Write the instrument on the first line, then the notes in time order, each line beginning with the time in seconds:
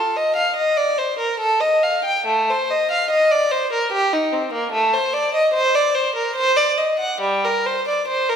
violin
Already playing: A4
0.17 D#5
0.36 F5
0.56 D#5
0.77 D5
0.98 C5
1.19 A#4
1.40 A4
1.60 D#5
1.83 F5
2.05 G5
2.26 A3
2.50 C5
2.70 D#5
2.91 F5
3.10 D#5
3.31 D5
3.51 C5
3.73 A#4
3.92 G4
4.13 D#4
4.32 C4
4.53 A#3
4.72 A3
4.94 C5
5.13 D5
5.35 D#5
5.54 C5
5.75 D5
5.94 C5
6.15 A#4
6.36 C5
6.56 D5
6.77 D#5
6.99 F#5
7.21 G3
7.45 A#4
7.66 C5
7.88 D5
8.08 C5
8.29 A#4